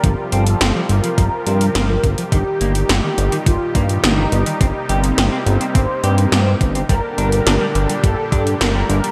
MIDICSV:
0, 0, Header, 1, 6, 480
1, 0, Start_track
1, 0, Key_signature, -2, "minor"
1, 0, Tempo, 571429
1, 30, Time_signature, 4, 2, 24, 8
1, 7657, End_track
2, 0, Start_track
2, 0, Title_t, "Analog polysynth"
2, 0, Program_c, 0, 90
2, 0, Note_on_c, 0, 70, 90
2, 174, Note_off_c, 0, 70, 0
2, 270, Note_on_c, 0, 69, 95
2, 676, Note_off_c, 0, 69, 0
2, 752, Note_on_c, 0, 70, 106
2, 1855, Note_off_c, 0, 70, 0
2, 1952, Note_on_c, 0, 67, 104
2, 2815, Note_off_c, 0, 67, 0
2, 2910, Note_on_c, 0, 65, 91
2, 3316, Note_off_c, 0, 65, 0
2, 3391, Note_on_c, 0, 63, 91
2, 4015, Note_off_c, 0, 63, 0
2, 4111, Note_on_c, 0, 60, 97
2, 4516, Note_off_c, 0, 60, 0
2, 4592, Note_on_c, 0, 60, 106
2, 5695, Note_off_c, 0, 60, 0
2, 5792, Note_on_c, 0, 70, 101
2, 6655, Note_off_c, 0, 70, 0
2, 6750, Note_on_c, 0, 69, 84
2, 7156, Note_off_c, 0, 69, 0
2, 7231, Note_on_c, 0, 70, 95
2, 7657, Note_off_c, 0, 70, 0
2, 7657, End_track
3, 0, Start_track
3, 0, Title_t, "Clean electric guitar"
3, 0, Program_c, 1, 27
3, 30, Note_on_c, 1, 53, 79
3, 66, Note_off_c, 1, 53, 0
3, 272, Note_on_c, 1, 60, 74
3, 362, Note_off_c, 1, 60, 0
3, 511, Note_on_c, 1, 60, 80
3, 571, Note_off_c, 1, 60, 0
3, 632, Note_on_c, 1, 53, 95
3, 667, Note_off_c, 1, 53, 0
3, 872, Note_on_c, 1, 53, 72
3, 907, Note_off_c, 1, 53, 0
3, 994, Note_on_c, 1, 53, 79
3, 1028, Note_off_c, 1, 53, 0
3, 1233, Note_on_c, 1, 60, 75
3, 1322, Note_off_c, 1, 60, 0
3, 1471, Note_on_c, 1, 60, 78
3, 1530, Note_off_c, 1, 60, 0
3, 1592, Note_on_c, 1, 53, 98
3, 1627, Note_off_c, 1, 53, 0
3, 1831, Note_on_c, 1, 53, 71
3, 1867, Note_off_c, 1, 53, 0
3, 1952, Note_on_c, 1, 51, 83
3, 1987, Note_off_c, 1, 51, 0
3, 2192, Note_on_c, 1, 58, 79
3, 2281, Note_off_c, 1, 58, 0
3, 2431, Note_on_c, 1, 58, 75
3, 2491, Note_off_c, 1, 58, 0
3, 2552, Note_on_c, 1, 51, 96
3, 2587, Note_off_c, 1, 51, 0
3, 2790, Note_on_c, 1, 51, 80
3, 2826, Note_off_c, 1, 51, 0
3, 2910, Note_on_c, 1, 51, 77
3, 2946, Note_off_c, 1, 51, 0
3, 3149, Note_on_c, 1, 58, 74
3, 3240, Note_off_c, 1, 58, 0
3, 3389, Note_on_c, 1, 58, 78
3, 3450, Note_off_c, 1, 58, 0
3, 3511, Note_on_c, 1, 51, 103
3, 3547, Note_off_c, 1, 51, 0
3, 3751, Note_on_c, 1, 51, 74
3, 3787, Note_off_c, 1, 51, 0
3, 3871, Note_on_c, 1, 60, 79
3, 3907, Note_off_c, 1, 60, 0
3, 4111, Note_on_c, 1, 67, 70
3, 4201, Note_off_c, 1, 67, 0
3, 4350, Note_on_c, 1, 67, 74
3, 4410, Note_off_c, 1, 67, 0
3, 4471, Note_on_c, 1, 60, 96
3, 4507, Note_off_c, 1, 60, 0
3, 4711, Note_on_c, 1, 60, 75
3, 4747, Note_off_c, 1, 60, 0
3, 4831, Note_on_c, 1, 60, 78
3, 4867, Note_off_c, 1, 60, 0
3, 5071, Note_on_c, 1, 67, 73
3, 5161, Note_off_c, 1, 67, 0
3, 5311, Note_on_c, 1, 67, 81
3, 5371, Note_off_c, 1, 67, 0
3, 5431, Note_on_c, 1, 60, 93
3, 5467, Note_off_c, 1, 60, 0
3, 5672, Note_on_c, 1, 60, 68
3, 5707, Note_off_c, 1, 60, 0
3, 5791, Note_on_c, 1, 55, 85
3, 5827, Note_off_c, 1, 55, 0
3, 6031, Note_on_c, 1, 62, 77
3, 6121, Note_off_c, 1, 62, 0
3, 6271, Note_on_c, 1, 62, 77
3, 6331, Note_off_c, 1, 62, 0
3, 6391, Note_on_c, 1, 55, 96
3, 6426, Note_off_c, 1, 55, 0
3, 6631, Note_on_c, 1, 55, 77
3, 6667, Note_off_c, 1, 55, 0
3, 6750, Note_on_c, 1, 55, 78
3, 6786, Note_off_c, 1, 55, 0
3, 6990, Note_on_c, 1, 62, 72
3, 7080, Note_off_c, 1, 62, 0
3, 7231, Note_on_c, 1, 62, 78
3, 7291, Note_off_c, 1, 62, 0
3, 7351, Note_on_c, 1, 55, 96
3, 7387, Note_off_c, 1, 55, 0
3, 7593, Note_on_c, 1, 55, 74
3, 7628, Note_off_c, 1, 55, 0
3, 7657, End_track
4, 0, Start_track
4, 0, Title_t, "Supersaw synth"
4, 0, Program_c, 2, 81
4, 0, Note_on_c, 2, 55, 73
4, 30, Note_on_c, 2, 48, 78
4, 31, Note_on_c, 2, 53, 72
4, 31, Note_on_c, 2, 65, 73
4, 31, Note_on_c, 2, 67, 91
4, 1918, Note_off_c, 2, 55, 0
4, 1931, Note_off_c, 2, 48, 0
4, 1931, Note_off_c, 2, 53, 0
4, 1932, Note_off_c, 2, 65, 0
4, 1953, Note_on_c, 2, 46, 81
4, 1953, Note_on_c, 2, 51, 76
4, 1953, Note_on_c, 2, 55, 77
4, 1953, Note_on_c, 2, 63, 69
4, 3852, Note_off_c, 2, 51, 0
4, 3853, Note_off_c, 2, 46, 0
4, 3869, Note_on_c, 2, 58, 75
4, 3870, Note_on_c, 2, 48, 80
4, 5757, Note_off_c, 2, 67, 0
4, 5758, Note_off_c, 2, 55, 0
4, 5758, Note_off_c, 2, 63, 0
4, 5771, Note_off_c, 2, 48, 0
4, 5771, Note_off_c, 2, 58, 0
4, 5790, Note_on_c, 2, 46, 80
4, 5790, Note_on_c, 2, 50, 72
4, 5790, Note_on_c, 2, 55, 70
4, 5790, Note_on_c, 2, 62, 74
4, 5790, Note_on_c, 2, 67, 90
4, 7657, Note_off_c, 2, 46, 0
4, 7657, Note_off_c, 2, 50, 0
4, 7657, Note_off_c, 2, 55, 0
4, 7657, Note_off_c, 2, 62, 0
4, 7657, Note_off_c, 2, 67, 0
4, 7657, End_track
5, 0, Start_track
5, 0, Title_t, "Analog synth bass"
5, 0, Program_c, 3, 38
5, 31, Note_on_c, 3, 31, 102
5, 128, Note_off_c, 3, 31, 0
5, 271, Note_on_c, 3, 31, 84
5, 465, Note_off_c, 3, 31, 0
5, 511, Note_on_c, 3, 31, 86
5, 608, Note_off_c, 3, 31, 0
5, 750, Note_on_c, 3, 31, 97
5, 847, Note_off_c, 3, 31, 0
5, 990, Note_on_c, 3, 31, 84
5, 1087, Note_off_c, 3, 31, 0
5, 1231, Note_on_c, 3, 43, 74
5, 1425, Note_off_c, 3, 43, 0
5, 1470, Note_on_c, 3, 31, 92
5, 1664, Note_off_c, 3, 31, 0
5, 1710, Note_on_c, 3, 31, 101
5, 1807, Note_off_c, 3, 31, 0
5, 1950, Note_on_c, 3, 31, 96
5, 2047, Note_off_c, 3, 31, 0
5, 2191, Note_on_c, 3, 31, 84
5, 2385, Note_off_c, 3, 31, 0
5, 2430, Note_on_c, 3, 31, 85
5, 2527, Note_off_c, 3, 31, 0
5, 2669, Note_on_c, 3, 31, 97
5, 2767, Note_off_c, 3, 31, 0
5, 2910, Note_on_c, 3, 31, 87
5, 3007, Note_off_c, 3, 31, 0
5, 3150, Note_on_c, 3, 43, 76
5, 3344, Note_off_c, 3, 43, 0
5, 3390, Note_on_c, 3, 31, 91
5, 3584, Note_off_c, 3, 31, 0
5, 3630, Note_on_c, 3, 31, 96
5, 3727, Note_off_c, 3, 31, 0
5, 3870, Note_on_c, 3, 31, 102
5, 3967, Note_off_c, 3, 31, 0
5, 4109, Note_on_c, 3, 31, 87
5, 4304, Note_off_c, 3, 31, 0
5, 4349, Note_on_c, 3, 31, 92
5, 4447, Note_off_c, 3, 31, 0
5, 4588, Note_on_c, 3, 31, 104
5, 4686, Note_off_c, 3, 31, 0
5, 4831, Note_on_c, 3, 31, 84
5, 4928, Note_off_c, 3, 31, 0
5, 5069, Note_on_c, 3, 43, 79
5, 5264, Note_off_c, 3, 43, 0
5, 5309, Note_on_c, 3, 43, 90
5, 5504, Note_off_c, 3, 43, 0
5, 5550, Note_on_c, 3, 31, 86
5, 5744, Note_off_c, 3, 31, 0
5, 5791, Note_on_c, 3, 31, 95
5, 5887, Note_off_c, 3, 31, 0
5, 6031, Note_on_c, 3, 31, 86
5, 6224, Note_off_c, 3, 31, 0
5, 6270, Note_on_c, 3, 31, 89
5, 6367, Note_off_c, 3, 31, 0
5, 6511, Note_on_c, 3, 31, 102
5, 6608, Note_off_c, 3, 31, 0
5, 6751, Note_on_c, 3, 31, 85
5, 6848, Note_off_c, 3, 31, 0
5, 6991, Note_on_c, 3, 43, 82
5, 7184, Note_off_c, 3, 43, 0
5, 7230, Note_on_c, 3, 31, 88
5, 7424, Note_off_c, 3, 31, 0
5, 7470, Note_on_c, 3, 31, 102
5, 7567, Note_off_c, 3, 31, 0
5, 7657, End_track
6, 0, Start_track
6, 0, Title_t, "Drums"
6, 31, Note_on_c, 9, 36, 110
6, 31, Note_on_c, 9, 42, 85
6, 115, Note_off_c, 9, 36, 0
6, 115, Note_off_c, 9, 42, 0
6, 271, Note_on_c, 9, 42, 65
6, 355, Note_off_c, 9, 42, 0
6, 391, Note_on_c, 9, 42, 66
6, 475, Note_off_c, 9, 42, 0
6, 511, Note_on_c, 9, 38, 118
6, 511, Note_on_c, 9, 42, 95
6, 595, Note_off_c, 9, 38, 0
6, 595, Note_off_c, 9, 42, 0
6, 751, Note_on_c, 9, 42, 60
6, 835, Note_off_c, 9, 42, 0
6, 871, Note_on_c, 9, 42, 65
6, 955, Note_off_c, 9, 42, 0
6, 990, Note_on_c, 9, 36, 121
6, 991, Note_on_c, 9, 42, 83
6, 1074, Note_off_c, 9, 36, 0
6, 1075, Note_off_c, 9, 42, 0
6, 1231, Note_on_c, 9, 42, 66
6, 1315, Note_off_c, 9, 42, 0
6, 1352, Note_on_c, 9, 42, 64
6, 1436, Note_off_c, 9, 42, 0
6, 1471, Note_on_c, 9, 38, 121
6, 1471, Note_on_c, 9, 42, 99
6, 1555, Note_off_c, 9, 38, 0
6, 1555, Note_off_c, 9, 42, 0
6, 1710, Note_on_c, 9, 36, 99
6, 1711, Note_on_c, 9, 42, 66
6, 1794, Note_off_c, 9, 36, 0
6, 1795, Note_off_c, 9, 42, 0
6, 1831, Note_on_c, 9, 42, 67
6, 1915, Note_off_c, 9, 42, 0
6, 1950, Note_on_c, 9, 36, 119
6, 1951, Note_on_c, 9, 42, 85
6, 2034, Note_off_c, 9, 36, 0
6, 2035, Note_off_c, 9, 42, 0
6, 2191, Note_on_c, 9, 42, 67
6, 2275, Note_off_c, 9, 42, 0
6, 2311, Note_on_c, 9, 42, 66
6, 2395, Note_off_c, 9, 42, 0
6, 2431, Note_on_c, 9, 38, 115
6, 2431, Note_on_c, 9, 42, 93
6, 2515, Note_off_c, 9, 38, 0
6, 2515, Note_off_c, 9, 42, 0
6, 2671, Note_on_c, 9, 42, 66
6, 2755, Note_off_c, 9, 42, 0
6, 2791, Note_on_c, 9, 42, 61
6, 2875, Note_off_c, 9, 42, 0
6, 2910, Note_on_c, 9, 36, 127
6, 2911, Note_on_c, 9, 42, 84
6, 2994, Note_off_c, 9, 36, 0
6, 2995, Note_off_c, 9, 42, 0
6, 3150, Note_on_c, 9, 36, 114
6, 3150, Note_on_c, 9, 42, 69
6, 3234, Note_off_c, 9, 36, 0
6, 3234, Note_off_c, 9, 42, 0
6, 3271, Note_on_c, 9, 42, 62
6, 3355, Note_off_c, 9, 42, 0
6, 3391, Note_on_c, 9, 38, 126
6, 3391, Note_on_c, 9, 42, 99
6, 3475, Note_off_c, 9, 38, 0
6, 3475, Note_off_c, 9, 42, 0
6, 3630, Note_on_c, 9, 42, 63
6, 3714, Note_off_c, 9, 42, 0
6, 3750, Note_on_c, 9, 42, 64
6, 3834, Note_off_c, 9, 42, 0
6, 3870, Note_on_c, 9, 36, 118
6, 3871, Note_on_c, 9, 42, 80
6, 3954, Note_off_c, 9, 36, 0
6, 3955, Note_off_c, 9, 42, 0
6, 4110, Note_on_c, 9, 42, 63
6, 4194, Note_off_c, 9, 42, 0
6, 4231, Note_on_c, 9, 42, 61
6, 4315, Note_off_c, 9, 42, 0
6, 4351, Note_on_c, 9, 38, 123
6, 4351, Note_on_c, 9, 42, 90
6, 4435, Note_off_c, 9, 38, 0
6, 4435, Note_off_c, 9, 42, 0
6, 4591, Note_on_c, 9, 42, 62
6, 4675, Note_off_c, 9, 42, 0
6, 4711, Note_on_c, 9, 42, 60
6, 4795, Note_off_c, 9, 42, 0
6, 4831, Note_on_c, 9, 36, 119
6, 4831, Note_on_c, 9, 42, 81
6, 4915, Note_off_c, 9, 36, 0
6, 4915, Note_off_c, 9, 42, 0
6, 5070, Note_on_c, 9, 42, 63
6, 5154, Note_off_c, 9, 42, 0
6, 5191, Note_on_c, 9, 42, 60
6, 5275, Note_off_c, 9, 42, 0
6, 5311, Note_on_c, 9, 38, 123
6, 5311, Note_on_c, 9, 42, 87
6, 5395, Note_off_c, 9, 38, 0
6, 5395, Note_off_c, 9, 42, 0
6, 5551, Note_on_c, 9, 36, 102
6, 5552, Note_on_c, 9, 42, 65
6, 5635, Note_off_c, 9, 36, 0
6, 5636, Note_off_c, 9, 42, 0
6, 5672, Note_on_c, 9, 42, 61
6, 5756, Note_off_c, 9, 42, 0
6, 5791, Note_on_c, 9, 36, 106
6, 5792, Note_on_c, 9, 42, 80
6, 5875, Note_off_c, 9, 36, 0
6, 5876, Note_off_c, 9, 42, 0
6, 6032, Note_on_c, 9, 42, 61
6, 6116, Note_off_c, 9, 42, 0
6, 6152, Note_on_c, 9, 42, 58
6, 6236, Note_off_c, 9, 42, 0
6, 6272, Note_on_c, 9, 38, 117
6, 6272, Note_on_c, 9, 42, 82
6, 6356, Note_off_c, 9, 38, 0
6, 6356, Note_off_c, 9, 42, 0
6, 6512, Note_on_c, 9, 42, 59
6, 6596, Note_off_c, 9, 42, 0
6, 6632, Note_on_c, 9, 42, 61
6, 6716, Note_off_c, 9, 42, 0
6, 6751, Note_on_c, 9, 36, 124
6, 6753, Note_on_c, 9, 42, 74
6, 6835, Note_off_c, 9, 36, 0
6, 6837, Note_off_c, 9, 42, 0
6, 6991, Note_on_c, 9, 36, 108
6, 6992, Note_on_c, 9, 42, 61
6, 7075, Note_off_c, 9, 36, 0
6, 7076, Note_off_c, 9, 42, 0
6, 7113, Note_on_c, 9, 42, 59
6, 7197, Note_off_c, 9, 42, 0
6, 7232, Note_on_c, 9, 38, 119
6, 7232, Note_on_c, 9, 42, 88
6, 7316, Note_off_c, 9, 38, 0
6, 7316, Note_off_c, 9, 42, 0
6, 7473, Note_on_c, 9, 42, 62
6, 7557, Note_off_c, 9, 42, 0
6, 7593, Note_on_c, 9, 42, 63
6, 7657, Note_off_c, 9, 42, 0
6, 7657, End_track
0, 0, End_of_file